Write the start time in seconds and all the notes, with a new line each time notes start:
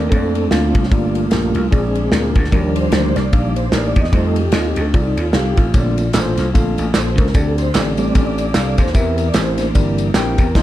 Already playing: A3 C4 D4 A#4
0.10 F2 A#3 D4 F4 A4 C#5, kick, ride
0.17 D5
0.35 ride
0.50 D2 A#3 D4 F4 A4 F5, snare, ride
0.75 C2, kick, ride
0.83 C#4, snare
0.91 G1 G2 A3 A#3 D4 F4 G4 D5, kick, ride
1.15 ride
1.31 A#1 A#3 D4 F4 G4 A#4, snare, ride
1.54 C2 F4, ride
1.70 A#1 A#2 G#3 A#3 C4 D4 F4 G#4 D5, kick, ride
1.95 ride
2.11 D2 A#3 D4 F4 G#4 A#4, snare, ride
2.35 D2, kick, ride
2.44 snare
2.51 D#2 D#3 F3 G3 A#3 D4 D#4 F#4 A#4 D5, kick, ride
2.57 G4
2.75 C5, ride
2.92 D2 A#3 D4 D#4 G4 A#4, snare, ride
3.16 C2 D5, snare, ride
3.32 A#1 F3 G3 A#3 D4 D#4 G4 F5, kick, ride
3.56 C5, ride
3.72 A1 A#3 D4 D#4 G4 A#4 C5, snare, ride
3.78 D5
3.88 D5
3.96 E2, kick, ride
4.00 D#5, snare
4.13 F2 G3 A3 C4 D#4 F4 A4 C5 D#5, kick, ride
4.27 A4
4.36 G4, ride
4.52 D#2 C4 D#4 F4 A4 D#5, snare, ride
4.68 G4
4.76 D2, ride
4.81 A4
4.93 C2 C4 D#4 F4 G#4 D5, kick, ride
4.99 A4
5.07 D#4
5.17 D#2, ride
5.21 F4
5.33 C2 C4 D#4 F4 G4 A4 F5, snare, ride
5.57 A1 F4, kick, ride
5.73 A#1 A#2 D3 A3 A#3 C4 D4 F4 A4 C#5, kick, ride, tambourine
5.80 D5
5.98 ride, tambourine
6.13 A1 A#3 D4 F4 A4 B4, snare, clap, ride, tambourine
6.20 C5
6.37 C2, snare, ride, tambourine
6.53 A#1 D3 A3 A#3 C4 D4 F4 A4 F5, kick, ride, tambourine
6.78 A1, ride, tambourine
6.94 A#1 A#3 D4 F4 A4 C5, snare, clap, ride, tambourine
7.12 A4
7.18 C#2 A#4, kick, ride, tambourine
7.27 snare
7.34 D2 D3 C4 D4 G4 A4 D5, kick, ride, tambourine
7.58 C5, ride, tambourine
7.74 A1 C4 D4 G4 A4 C5, snare, clap, ride, tambourine
7.80 D5
7.97 G3 A3 C4 D5, ride, tambourine
8.14 A1 C4 D4 G4 A4 D5, kick, ride, tambourine
8.38 ride, tambourine
8.54 C2 C4 D4 F4 A4 F5, snare, clap, ride, tambourine
8.59 G4
8.78 D#2 C5, kick, ride, tambourine
8.87 snare
8.94 E2 E3 C4 E4 G4 A#4 E5, kick, ride, tambourine
9.18 A#4, ride, tambourine
9.28 D5
9.34 A1 C4 E4 G4 A#4 C5, snare, clap, ride, tambourine
9.57 E3 A#3 D4, snare, ride, tambourine
9.74 G1 C4 D4 G4 A#4 D5, kick, ride, tambourine
9.79 E4
9.98 ride, tambourine
10.14 A#1 C4 E4 G4 A#4 G5, snare, clap, ride, tambourine
10.37 E2 A#4, kick, ride, tambourine
10.55 F1 G3 A#3 C4 D#4 F4 A#4 C5 D#5, kick, snare, crash